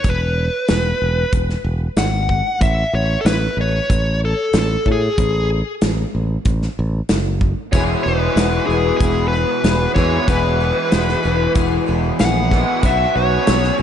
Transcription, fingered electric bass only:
0.04 0.48 E1 medium
0.70 0.92 E1 medium
1.02 1.23 E1 medium
1.33 1.55 E1 medium
1.64 1.87 E1 medium
1.97 2.40 G#1 medium
2.61 2.83 A1 medium
2.93 3.15 A1 medium
3.25 3.47 A1 medium
3.57 3.79 A1 medium
3.90 4.33 A1 medium
4.54 4.75 A1 medium
4.86 5.08 A2 medium
5.18 5.61 A1 medium
5.83 6.04 A1 medium
6.15 6.36 A1 medium
6.45 6.67 A1 medium
6.79 7.00 A1 medium
7.09 7.53 F#1 medium
7.73 7.95 E1 medium
8.06 8.27 E1 medium
8.36 8.58 E1 medium
8.69 8.90 E1 medium
9.00 9.44 E1 medium
9.64 9.86 E1 medium
9.95 10.18 E2 medium
10.28 10.71 E1 medium
10.93 11.14 E1 medium
11.25 11.46 E1 medium
11.56 11.77 E1 medium
11.89 12.10 E1 medium
12.20 12.63 A#1 medium
12.83 13.05 B1 medium
13.16 13.37 B1 medium
13.48 13.69 B1 medium

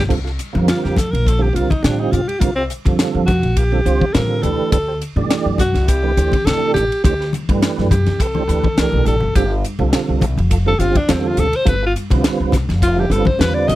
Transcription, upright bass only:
0.10 0.37 C2 medium
0.55 0.67 F2 medium
0.85 1.11 F2 medium
1.13 1.52 A#1 medium
1.55 1.69 C2 medium
1.84 2.10 A2 medium
2.13 2.27 G2 medium
2.41 2.68 C2 medium
2.86 2.98 F2 medium
3.15 3.41 F2 medium
3.43 3.82 A#1 medium
3.86 4.00 C2 medium
4.15 4.41 A2 medium
4.43 4.58 D2 medium
4.72 4.99 D2 loud
5.16 5.29 G2 medium
5.46 5.73 F#2 medium
5.74 6.14 C2 medium
6.17 6.32 D2 medium
6.46 6.73 C3 medium
6.74 6.89 A1 medium
7.04 7.31 D2 loud
7.49 7.61 G2 loud
7.78 8.05 F#2 medium
8.07 8.46 C2 medium
8.48 8.63 D2 medium
8.77 8.91 C2 medium
8.93 9.05 B1 medium
9.06 9.21 A1 medium
9.22 9.34 G1 medium
9.35 9.62 G1 loud
9.79 9.92 C2 medium
10.09 10.35 C2 medium
10.37 10.76 F1 medium
10.79 10.94 G1 medium
11.09 11.35 E2 medium
11.38 11.52 D2 medium
11.67 11.93 G1 medium
12.11 12.23 C2 loud
12.40 12.67 C2 medium
12.69 13.07 F1 medium
13.10 13.25 G1 medium
13.39 13.66 E2 medium
13.68 13.75 B1 medium

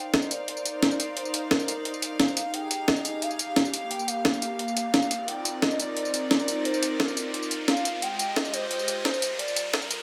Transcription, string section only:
0.00 3.87 D#4 medium
0.00 2.51 A#4 medium
0.00 2.51 C5 medium
0.00 2.51 D5 medium
0.00 5.24 F5 medium
2.54 5.25 G4 medium
2.54 3.90 G#4 medium
3.90 5.27 A#3 medium
5.28 8.00 C4 medium
5.28 8.00 D#4 medium
5.28 10.03 F4 medium
5.28 8.00 A#4 medium
5.28 8.00 D5 medium
8.02 9.38 G#3 medium
8.02 9.38 G4 medium
8.02 9.38 D#5 medium
9.39 10.03 G3 medium
9.39 10.03 A#4 medium

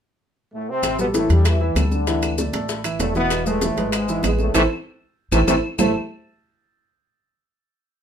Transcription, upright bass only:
0.83 1.26 A1 medium
1.29 1.73 E2 medium
1.75 2.48 D2 medium
2.53 2.96 A1 medium
2.99 3.71 E1 medium
3.77 4.20 G#1 medium
4.23 4.52 A1 medium
4.54 4.66 A1 medium
5.32 5.43 A1 loud
5.47 5.59 A1 medium
5.78 5.93 A1 medium

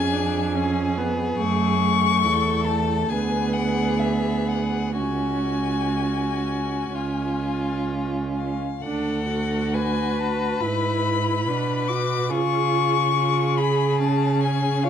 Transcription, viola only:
0.00 0.14 C#4 soft
0.13 0.56 D4 soft
0.55 0.99 C#4 soft
0.98 1.41 B3 soft
1.39 1.82 A3 soft
1.83 3.13 A3 soft
3.11 4.99 B3 soft
5.01 6.91 C#4 soft
6.96 8.59 C#4 soft
8.84 9.26 D4 soft
9.31 10.63 F#4 soft
10.61 11.49 E4 soft
11.48 11.91 D4 soft
11.89 12.31 F#4 soft
12.32 13.15 F4 soft
13.17 13.60 F4 soft
13.59 14.02 G#4 soft
14.00 14.85 C#4 soft
14.84 14.90 F4 soft

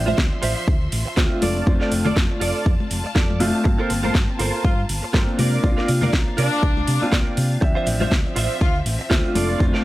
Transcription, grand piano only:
0.00 1.14 F3 medium
0.00 1.15 C4 medium
0.00 1.15 D4 medium
0.00 1.15 E5 medium
1.16 1.64 A3 medium
1.16 1.64 C4 medium
1.16 1.64 D4 medium
1.16 1.64 F4 medium
1.66 3.01 A3 medium
1.66 3.01 C4 medium
1.66 3.02 D4 medium
1.66 3.02 F4 medium
3.40 3.62 A3 medium
3.40 3.62 C4 medium
3.40 3.63 D4 medium
3.40 3.63 F4 loud
3.64 5.11 A#3 medium
3.64 5.11 C4 medium
3.64 5.11 F4 medium
3.64 5.12 A5 medium
5.13 5.61 A#3 medium
5.13 5.61 C4 medium
5.13 5.61 D4 medium
5.13 5.61 F4 medium
5.63 6.98 A#3 medium
5.63 6.98 C4 medium
5.63 6.98 D4 medium
5.63 6.98 F4 medium
7.01 7.59 A#3 medium
7.01 7.59 C4 medium
7.01 7.60 D4 medium
7.01 7.60 F4 medium
7.61 9.08 F3 medium
7.61 9.08 C4 medium
7.61 9.08 D4 medium
7.61 9.09 E5 medium
9.10 9.57 A3 medium
9.10 9.58 C4 medium
9.10 9.58 D4 medium
9.10 9.58 F4 medium
9.59 9.84 A3 medium
9.59 9.84 C4 medium
9.59 9.84 D4 medium
9.59 9.84 F4 loud

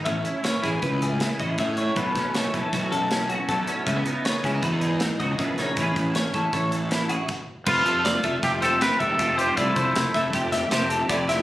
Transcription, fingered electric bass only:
0.07 0.22 A1 medium
0.64 0.79 A1 medium
0.82 1.28 C#2 medium
1.40 1.55 A1 medium
1.59 1.89 A2 medium
1.97 2.12 B1 medium
2.16 2.46 B1 medium
2.54 2.61 B1 medium
2.73 3.34 B1 medium
3.49 3.64 B1 medium
3.87 4.02 C#2 medium
4.44 4.59 C#2 medium
4.63 5.09 E2 medium
5.20 5.35 C#2 medium
5.39 5.69 A#1 medium
5.77 5.92 A1 medium
5.96 6.26 A1 medium
6.34 6.42 A1 medium
6.53 7.14 A1 medium
7.66 7.82 F1 medium
7.85 8.16 F1 medium
8.24 8.39 F1 medium
8.43 8.89 F1 medium
9.01 9.16 E1 medium
9.19 9.50 F1 loud
9.58 9.73 C2 medium
9.76 9.91 C2 medium
9.95 10.03 F1 medium
10.15 10.30 F1 medium
10.34 10.64 F1 medium
10.71 11.02 F1 medium
11.09 11.40 F1 medium

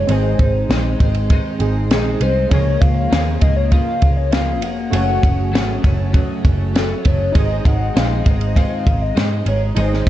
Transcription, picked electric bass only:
0.09 0.33 G#1 loud
0.39 0.64 G#1 loud
0.69 0.94 A#1 loud
1.00 1.37 G#1 medium
1.60 1.90 G#1 medium
1.90 2.15 A#1 medium
2.21 2.45 C2 medium
2.51 2.76 C#2 loud
2.82 3.06 C#2 loud
3.12 3.36 D#2 medium
3.42 3.78 C#2 medium
4.02 4.62 C#2 medium
4.62 4.87 F1 medium
4.93 5.17 F#1 loud
5.23 5.53 F#1 medium
5.53 5.77 G#1 loud
5.84 6.20 F#1 medium
6.45 6.93 F#1 loud
7.06 7.29 F#1 medium
7.35 7.59 G#1 loud
7.65 7.89 G#1 loud
7.96 8.20 A#1 loud
8.26 8.62 G#1 loud
8.87 9.11 G#1 loud
9.17 9.41 G#2 loud
9.46 9.70 G#1 medium
9.77 10.01 G#1 loud

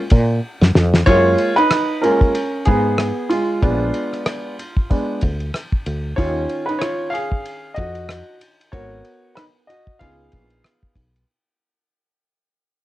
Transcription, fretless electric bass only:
0.12 0.39 A#2 medium
0.61 0.73 F#2 medium
0.75 1.03 F2 medium
1.07 1.35 F#2 medium
2.67 3.10 G#2 medium
3.63 3.90 A#1 medium
5.23 5.50 D2 medium
5.86 6.13 D2 medium
6.18 6.45 D#2 medium
7.78 8.21 F2 medium
8.73 9.00 G#1 medium
10.01 10.28 C#2 medium
10.33 10.60 A#1 medium
10.95 11.23 B1 medium

